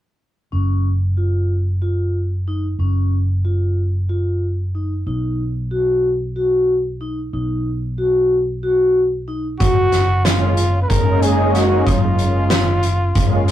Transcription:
0.52 fingered electric bass F#1, vibraphone C#4
1.17 vibraphone F4
1.82 vibraphone F4
2.48 vibraphone D#4
2.79 fingered electric bass F#1, vibraphone C#4
3.45 vibraphone F4
4.09 vibraphone F4
4.75 vibraphone D#4
5.07 fingered electric bass B1, vibraphone D#4
5.71 vibraphone F#4
6.36 vibraphone F#4
7.01 vibraphone D#4
7.33 fingered electric bass B1, vibraphone D#4
7.98 vibraphone F#4
8.63 vibraphone F#4
9.28 vibraphone D#4
9.60 fingered electric bass F#1, trumpet F#4, vibraphone F#4, kick, closed hi-hat
9.92 fingered electric bass F#1, snare, closed hi-hat
10.24 trumpet F4, vibraphone F4, snare, closed hi-hat
10.57 closed hi-hat
10.82 trumpet B4
10.88 fingered electric bass F#1, analog synth pad G#3 A#3 C#4 D#4, trumpet A#4, kick, closed hi-hat
11.22 trumpet G#4, vibraphone G#4, closed hi-hat
11.54 trumpet F#4, vibraphone F#4, snare, closed hi-hat
11.86 fingered electric bass F#1, vibraphone F#3, trumpet F4, kick, closed hi-hat
12.19 closed hi-hat
12.50 vibraphone F4, snare, closed hi-hat
12.83 closed hi-hat
13.15 fingered electric bass F#1, kick, closed hi-hat
13.47 vibraphone G#4, snare, closed hi-hat

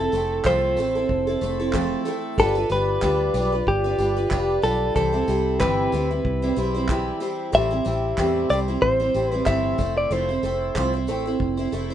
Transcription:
Already playing: twelve-string acoustic guitar A4, clean electric guitar A4
0.00 twelve-string acoustic guitar C4 E4
0.12 fingered electric bass F1, twelve-string acoustic guitar A3 C4 E4 A4, tambourine
0.44 fingered electric bass C2, twelve-string acoustic guitar F3 A3 C4 E4 A4, clean electric guitar C5, kick, clap
0.76 fingered electric bass A1, twelve-string acoustic guitar A3 C4 E4 A4, tambourine
0.95 twelve-string acoustic guitar C4 E4 A4
1.09 fingered electric bass F1, kick
1.27 twelve-string acoustic guitar C4 E4 A4
1.41 fingered electric bass F1, twelve-string acoustic guitar A3 C4 E4 A4, tambourine
1.60 twelve-string acoustic guitar C4 E4 A4
1.73 twelve-string acoustic guitar F3 A3 C4 E4 A4, kick, clap
2.05 twelve-string acoustic guitar A3 C4 E4 A4, tambourine
2.38 fingered electric bass G1, twelve-string acoustic guitar G3 D4 F4 B4, clean electric guitar A4, kick
2.55 twelve-string acoustic guitar D4 F4 B4
2.69 fingered electric bass G1, twelve-string acoustic guitar G3 D4 F4 B4, clean electric guitar B4, tambourine
3.01 fingered electric bass D2, twelve-string acoustic guitar G3 D4 F4 B4, kick, clap
3.34 fingered electric bass B1, twelve-string acoustic guitar G3 D4 F4 B4, tambourine
3.52 twelve-string acoustic guitar D4 F4 B4
3.67 fingered electric bass G1, clean electric guitar G4, kick
3.84 twelve-string acoustic guitar D4 F4 B4
3.98 fingered electric bass G1, twelve-string acoustic guitar G3 D4 F4 B4, tambourine
4.17 twelve-string acoustic guitar D4 F4 B4
4.31 fingered electric bass F1, twelve-string acoustic guitar G3 D4 F4 B4, kick, clap
4.62 fingered electric bass B1, twelve-string acoustic guitar G3 D4 F4 B4, clean electric guitar A4, tambourine
4.96 fingered electric bass C2, twelve-string acoustic guitar C3 E3 G3 C4 E4 C5, clean electric guitar A4, kick
5.13 twelve-string acoustic guitar G3 C4 E4 C5
5.28 fingered electric bass C2, twelve-string acoustic guitar G3 C4 E4 C5, tambourine
5.60 fingered electric bass G1, twelve-string acoustic guitar C3 E3 G3 C4 E4, clean electric guitar B4, kick, clap
5.92 fingered electric bass D2, twelve-string acoustic guitar G3 C4 E4 C5, tambourine
6.11 twelve-string acoustic guitar G3 C4 E4
6.25 fingered electric bass C2, kick
6.42 twelve-string acoustic guitar G3 C4 E4 C5
6.56 fingered electric bass B1, twelve-string acoustic guitar G3 C4 E4 C5, tambourine
6.74 twelve-string acoustic guitar G3 C4 E4 C5
6.88 twelve-string acoustic guitar E3 G3 C4 E4, kick, clap
7.20 twelve-string acoustic guitar G3 C4 E4 C5, tambourine
7.52 fingered electric bass A1, twelve-string acoustic guitar A2 E3 G3 C4 E4 C5, clean electric guitar E5, kick
7.70 twelve-string acoustic guitar G3 C4 E4 C5
7.85 fingered electric bass A1, twelve-string acoustic guitar G3 C4 E4 C5, tambourine
8.18 fingered electric bass E2, twelve-string acoustic guitar A2 E3 G3 C4 E4 C5, kick, clap
8.49 fingered electric bass C2, twelve-string acoustic guitar G3 C4 E4 C5, clean electric guitar D5, tambourine
8.68 twelve-string acoustic guitar G3 C4 E4 C5
8.82 fingered electric bass A1, clean electric guitar C5, kick
9.00 twelve-string acoustic guitar G3 C4 E4 C5
9.14 fingered electric bass A1, twelve-string acoustic guitar G3 C4 E4 C5, tambourine
9.29 twelve-string acoustic guitar E4 C5, clean electric guitar B4
9.34 twelve-string acoustic guitar G3 C4
9.46 fingered electric bass G1, twelve-string acoustic guitar A2 E3 G3 C4 E4 C5, clean electric guitar E5, kick, clap
9.78 fingered electric bass F1, twelve-string acoustic guitar A3 C4 E4 C5, kick, tambourine
9.98 clean electric guitar D5
10.10 fingered electric bass F1, twelve-string acoustic guitar F3 A3 C4 E4 C5, clean electric guitar C5
10.29 twelve-string acoustic guitar C4 E4 C5
10.43 fingered electric bass F1, twelve-string acoustic guitar A3 C4 E4 C5, tambourine
10.75 fingered electric bass C2, twelve-string acoustic guitar F3 A3 C4 E4 C5, kick, clap
10.94 twelve-string acoustic guitar C4 E4 C5
11.07 fingered electric bass A1, twelve-string acoustic guitar A3 C4 E4 C5, tambourine
11.26 twelve-string acoustic guitar C4 E4 C5
11.40 fingered electric bass F1, kick
11.57 twelve-string acoustic guitar C4 E4 C5
11.72 fingered electric bass F1, twelve-string acoustic guitar A3 C4 E4 C5, tambourine
11.90 twelve-string acoustic guitar C5

